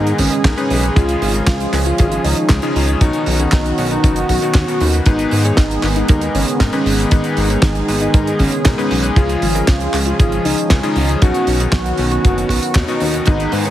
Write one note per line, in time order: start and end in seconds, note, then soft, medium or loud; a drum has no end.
0.00 0.13 G#2 medium
0.00 0.29 G#2 medium
0.00 0.92 D#3 medium
0.00 2.97 G#3 medium
0.00 0.29 B3 medium
0.00 0.92 B3 medium
0.00 0.29 D#4 medium
0.00 0.29 G#4 medium
0.00 2.97 G#4 loud
0.00 0.29 A#4 medium
0.07 closed hi-hat medium
0.18 0.29 G#1 medium
0.18 0.47 C#4 medium
0.18 kick medium
0.18 open hi-hat loud
0.32 closed hi-hat medium
0.45 0.55 B1 medium
0.45 0.55 G#2 medium
0.45 0.54 B3 medium
0.45 0.54 D#4 medium
0.45 0.54 G#4 medium
0.45 0.54 A#4 medium
0.45 kick loud
0.45 snare loud
0.45 clap medium
0.45 closed hi-hat medium
0.57 0.93 G#2 loud
0.57 0.93 B3 medium
0.57 0.86 C#4 loud
0.57 0.93 D#4 medium
0.57 0.93 G#4 medium
0.57 0.93 B4 loud
0.57 closed hi-hat medium
0.70 0.90 B1 loud
0.70 open hi-hat loud
0.83 closed hi-hat medium
0.96 1.16 C#2 loud
0.96 1.31 C#3 loud
0.96 2.99 F3 medium
0.96 1.31 G#3 medium
0.96 5.02 C#4 medium
0.96 1.31 C#4 medium
0.96 1.31 F4 medium
0.96 1.34 F4 loud
0.96 1.31 G#4 loud
0.96 kick loud
0.96 closed hi-hat medium
1.09 closed hi-hat medium
1.22 1.42 G#1 medium
1.22 open hi-hat loud
1.34 1.48 C#3 medium
1.34 1.48 G#3 medium
1.34 1.48 C#4 medium
1.34 1.48 F4 medium
1.34 1.48 A#4 medium
1.34 closed hi-hat medium
1.47 1.67 C#2 medium
1.47 1.75 F4 loud
1.47 kick loud
1.47 snare loud
1.47 clap medium
1.47 closed hi-hat loud
1.60 closed hi-hat medium
1.73 1.93 C#2 medium
1.73 1.96 C#3 medium
1.73 1.96 G#3 medium
1.73 1.96 C#4 medium
1.73 1.96 F4 medium
1.73 1.96 G#4 medium
1.73 clap medium
1.73 open hi-hat loud
1.86 2.14 F4 loud
1.86 closed hi-hat medium
1.98 2.19 G#1 loud
1.98 2.34 C#3 medium
1.98 2.34 G#3 medium
1.98 2.34 C#4 medium
1.98 2.34 F4 medium
1.98 2.34 G#4 medium
1.98 kick loud
1.98 closed hi-hat loud
2.12 closed hi-hat medium
2.24 2.34 C#2 medium
2.24 2.52 D#4 loud
2.24 open hi-hat loud
2.36 closed hi-hat medium
2.49 2.60 C#2 loud
2.49 2.60 C#3 medium
2.49 2.60 G#3 medium
2.49 2.60 C#4 medium
2.49 2.60 F4 medium
2.49 2.60 G#4 medium
2.49 kick loud
2.49 snare loud
2.49 clap medium
2.49 closed hi-hat loud
2.62 2.98 C#3 loud
2.62 2.98 G#3 medium
2.62 2.98 C#4 medium
2.62 2.91 D#4 loud
2.62 2.98 F4 medium
2.62 2.98 G#4 loud
2.62 closed hi-hat medium
2.76 2.96 C#2 medium
2.76 open hi-hat loud
2.88 closed hi-hat medium
3.01 3.11 B1 medium
3.01 3.37 B2 loud
3.01 5.04 D#3 medium
3.01 9.13 B3 medium
3.01 3.37 B3 medium
3.01 3.37 C#4 medium
3.01 3.39 D#4 loud
3.01 3.37 D#4 medium
3.01 5.04 F#4 medium
3.01 3.37 F#4 loud
3.01 kick loud
3.01 closed hi-hat loud
3.13 closed hi-hat medium
3.26 3.47 B1 loud
3.26 open hi-hat loud
3.39 3.53 B2 medium
3.39 3.53 B3 medium
3.39 3.53 C#4 medium
3.39 3.53 D#4 medium
3.39 3.53 G#4 medium
3.39 closed hi-hat medium
3.52 3.72 B1 loud
3.52 3.81 D#4 medium
3.52 kick loud
3.52 snare loud
3.52 clap loud
3.52 closed hi-hat loud
3.66 closed hi-hat medium
3.78 3.98 B1 medium
3.78 4.01 B2 medium
3.78 4.01 B3 medium
3.78 4.01 C#4 medium
3.78 4.01 D#4 medium
3.78 4.01 F#4 medium
3.78 open hi-hat loud
3.91 4.19 D#4 loud
3.91 closed hi-hat medium
4.04 4.24 F#1 medium
4.04 4.39 B2 medium
4.04 4.39 B3 medium
4.04 4.39 C#4 medium
4.04 4.39 D#4 medium
4.04 4.39 F#4 medium
4.04 kick loud
4.04 closed hi-hat loud
4.16 closed hi-hat medium
4.29 4.39 B1 medium
4.29 4.57 F#4 medium
4.29 kick medium
4.29 open hi-hat loud
4.42 4.65 B2 medium
4.42 4.65 B3 medium
4.42 4.65 C#4 medium
4.42 4.65 D#4 medium
4.42 4.65 F#4 medium
4.42 closed hi-hat medium
4.54 4.65 D#2 medium
4.54 kick loud
4.54 snare loud
4.54 clap medium
4.54 closed hi-hat loud
4.68 4.78 B2 medium
4.68 4.78 B3 medium
4.68 4.78 C#4 medium
4.68 4.78 D#4 medium
4.68 4.78 F#4 medium
4.68 4.96 F#4 loud
4.68 closed hi-hat medium
4.80 5.01 D#2 medium
4.80 5.03 G#2 medium
4.80 5.03 B3 medium
4.80 5.03 C#4 medium
4.80 5.03 D#4 medium
4.80 5.03 F#4 medium
4.80 open hi-hat loud
4.93 closed hi-hat medium
5.06 5.26 G#1 loud
5.06 5.42 G#2 loud
5.06 9.13 D#3 medium
5.06 11.18 G#3 medium
5.06 5.42 B3 medium
5.06 5.44 D#4 loud
5.06 5.42 D#4 medium
5.06 5.42 G#4 medium
5.06 11.18 G#4 loud
5.06 5.42 B4 loud
5.06 kick loud
5.06 closed hi-hat medium
5.19 closed hi-hat medium
5.31 5.52 G#2 medium
5.31 open hi-hat loud
5.44 5.59 G#2 medium
5.44 5.59 B3 medium
5.44 5.59 D#4 medium
5.44 5.59 G#4 medium
5.44 5.59 C#5 medium
5.44 closed hi-hat medium
5.57 5.78 G#1 medium
5.57 5.86 D#4 medium
5.57 kick loud
5.57 snare loud
5.57 clap medium
5.57 closed hi-hat loud
5.71 closed hi-hat medium
5.83 6.03 G#1 medium
5.83 6.06 G#2 medium
5.83 6.06 B3 medium
5.83 6.06 D#4 medium
5.83 6.06 G#4 medium
5.83 6.06 B4 medium
5.83 clap medium
5.83 open hi-hat loud
5.96 6.24 D#4 loud
5.96 closed hi-hat medium
6.08 6.29 D#2 loud
6.08 6.44 G#2 medium
6.08 6.44 B3 medium
6.08 6.44 D#4 medium
6.08 6.44 G#4 medium
6.08 6.44 A#4 medium
6.08 kick loud
6.08 closed hi-hat loud
6.21 closed hi-hat medium
6.35 6.45 G#1 medium
6.35 6.63 C#4 medium
6.35 open hi-hat loud
6.48 closed hi-hat medium
6.60 6.70 G#1 loud
6.60 6.70 G#2 medium
6.60 6.70 B3 medium
6.60 6.70 D#4 medium
6.60 6.70 G#4 medium
6.60 6.70 A#4 medium
6.60 kick loud
6.60 snare loud
6.60 clap medium
6.60 closed hi-hat loud
6.73 7.08 G#2 loud
6.73 7.08 B3 medium
6.73 7.01 C#4 loud
6.73 7.08 D#4 medium
6.73 7.08 G#4 medium
6.73 7.08 B4 loud
6.73 closed hi-hat medium
6.86 7.06 G#1 medium
6.86 open hi-hat loud
7.00 closed hi-hat medium
7.11 7.22 G#1 medium
7.11 7.47 G#2 loud
7.11 7.47 B3 medium
7.11 7.49 D#4 loud
7.11 7.47 D#4 medium
7.11 7.47 G#4 medium
7.11 7.47 B4 loud
7.11 kick loud
7.11 closed hi-hat loud
7.24 closed hi-hat medium
7.37 7.57 G#1 loud
7.37 open hi-hat loud
7.50 7.64 G#2 medium
7.50 7.64 B3 medium
7.50 7.64 D#4 medium
7.50 7.64 G#4 medium
7.50 7.64 C#5 medium
7.50 closed hi-hat medium
7.62 7.82 G#1 loud
7.62 7.91 D#4 loud
7.62 kick loud
7.62 snare loud
7.62 clap medium
7.62 closed hi-hat loud
7.75 closed hi-hat medium
7.88 8.08 G#1 medium
7.88 8.11 G#2 medium
7.88 8.11 B3 medium
7.88 8.11 D#4 medium
7.88 8.11 G#4 medium
7.88 8.11 B4 medium
7.88 open hi-hat loud
8.01 8.29 D#4 loud
8.01 closed hi-hat medium
8.14 8.49 G#2 medium
8.14 8.34 G#2 medium
8.14 8.49 B3 medium
8.14 8.49 D#4 medium
8.14 8.49 G#4 medium
8.14 8.49 A#4 medium
8.14 kick loud
8.14 closed hi-hat loud
8.27 closed hi-hat medium
8.39 8.50 G#1 medium
8.39 8.68 C#4 medium
8.39 kick medium
8.39 open hi-hat loud
8.52 closed hi-hat medium
8.65 8.75 B1 medium
8.65 8.75 G#2 medium
8.65 8.75 B3 medium
8.65 8.75 D#4 medium
8.65 8.75 G#4 medium
8.65 8.75 A#4 medium
8.65 kick loud
8.65 snare loud
8.65 clap medium
8.65 closed hi-hat loud
8.78 9.13 G#2 loud
8.78 9.13 B3 medium
8.78 9.06 C#4 medium
8.78 9.13 D#4 medium
8.78 9.13 G#4 medium
8.78 9.13 B4 loud
8.78 closed hi-hat medium
8.91 9.11 B1 loud
8.91 open hi-hat loud
9.04 closed hi-hat medium
9.16 9.36 C#2 loud
9.16 9.52 C#3 loud
9.16 11.20 F3 medium
9.16 9.52 G#3 medium
9.16 9.52 C#4 medium
9.16 13.23 C#4 medium
9.16 9.54 F4 loud
9.16 9.52 F4 medium
9.16 9.52 G#4 loud
9.16 kick loud
9.16 closed hi-hat medium
9.29 closed hi-hat medium
9.42 9.62 G#1 medium
9.42 open hi-hat loud
9.55 9.69 C#3 medium
9.55 9.69 G#3 medium
9.55 9.69 C#4 medium
9.55 9.69 F4 medium
9.55 9.69 A#4 medium
9.55 closed hi-hat medium
9.68 9.88 C#2 medium
9.68 9.96 F4 medium
9.68 kick loud
9.68 snare loud
9.68 clap loud
9.68 closed hi-hat loud
9.80 closed hi-hat medium
9.93 10.13 C#2 medium
9.93 10.16 C#3 medium
9.93 10.16 G#3 medium
9.93 10.16 C#4 medium
9.93 10.16 F4 medium
9.93 10.16 G#4 medium
9.93 clap medium
9.93 open hi-hat loud
10.05 10.35 F4 loud
10.05 closed hi-hat medium
10.19 10.39 G#1 loud
10.19 10.55 C#3 medium
10.19 10.55 G#3 medium
10.19 10.55 C#4 medium
10.19 10.55 F4 medium
10.19 10.55 G#4 medium
10.19 kick loud
10.19 closed hi-hat loud
10.32 closed hi-hat medium
10.45 10.55 C#2 medium
10.45 10.73 D#4 medium
10.45 open hi-hat loud
10.58 closed hi-hat medium
10.70 10.81 C#2 loud
10.70 10.80 C#3 medium
10.70 10.80 G#3 medium
10.70 10.80 C#4 medium
10.70 10.80 F4 medium
10.70 10.80 G#4 medium
10.70 kick loud
10.70 snare loud
10.70 clap medium
10.70 closed hi-hat medium
10.83 11.19 C#3 loud
10.83 11.19 G#3 medium
10.83 11.19 C#4 medium
10.83 11.11 D#4 loud
10.83 11.19 F4 medium
10.83 11.19 G#4 loud
10.83 closed hi-hat medium
10.96 11.16 C#2 medium
10.96 open hi-hat loud
11.09 closed hi-hat medium
11.21 11.32 B1 medium
11.21 11.57 B2 loud
11.21 13.70 D#3 medium
11.21 13.70 B3 medium
11.21 11.57 B3 medium
11.21 11.57 C#4 medium
11.21 11.57 D#4 medium
11.21 11.59 F#4 loud
11.21 13.25 F#4 medium
11.21 11.57 F#4 loud
11.21 kick loud
11.21 closed hi-hat medium
11.34 closed hi-hat medium
11.47 11.67 B1 loud
11.47 open hi-hat loud
11.60 11.74 B2 medium
11.60 11.74 B3 medium
11.60 11.74 C#4 medium
11.60 11.74 D#4 medium
11.60 11.74 G#4 medium
11.60 closed hi-hat medium
11.72 11.93 B1 loud
11.72 12.01 F#4 loud
11.72 kick loud
11.72 snare loud
11.72 clap medium
11.72 closed hi-hat loud
11.86 closed hi-hat medium
11.98 12.19 B1 medium
11.98 12.21 B2 medium
11.98 12.21 B3 medium
11.98 12.21 C#4 medium
11.98 12.21 D#4 medium
11.98 12.21 F#4 medium
11.98 open hi-hat loud
12.11 12.40 F#4 loud
12.11 closed hi-hat medium
12.24 12.44 F#1 medium
12.24 12.60 B2 medium
12.24 12.60 B3 medium
12.24 12.60 C#4 medium
12.24 12.60 D#4 medium
12.24 12.60 F#4 medium
12.24 kick loud
12.24 closed hi-hat medium
12.38 closed hi-hat medium
12.49 12.60 B1 medium
12.49 12.78 F#4 loud
12.49 kick medium
12.49 open hi-hat loud
12.63 closed hi-hat medium
12.75 12.85 D#2 medium
12.75 12.85 B2 medium
12.75 12.85 B3 medium
12.75 12.85 C#4 medium
12.75 12.85 D#4 medium
12.75 12.85 F#4 medium
12.75 kick loud
12.75 snare loud
12.75 clap medium
12.75 closed hi-hat medium
12.88 13.24 B2 loud
12.88 13.24 B3 medium
12.88 13.24 C#4 medium
12.88 13.24 D#4 medium
12.88 13.16 D#4 medium
12.88 13.24 F#4 loud
12.88 closed hi-hat medium
13.00 13.21 D#2 medium
13.00 open hi-hat loud
13.14 closed hi-hat medium
13.26 13.47 G#1 loud
13.26 13.62 G#2 loud
13.26 13.70 G#3 medium
13.26 13.62 B3 medium
13.26 13.64 D#4 loud
13.26 13.62 D#4 medium
13.26 13.62 G#4 medium
13.26 13.70 G#4 medium
13.26 13.62 B4 loud
13.26 kick loud
13.26 closed hi-hat medium
13.40 closed hi-hat medium
13.52 13.70 G#2 medium
13.52 open hi-hat loud
13.65 13.70 G#2 medium
13.65 13.70 B3 medium
13.65 13.70 D#4 medium
13.65 13.70 G#4 medium
13.65 13.70 C#5 medium
13.65 closed hi-hat medium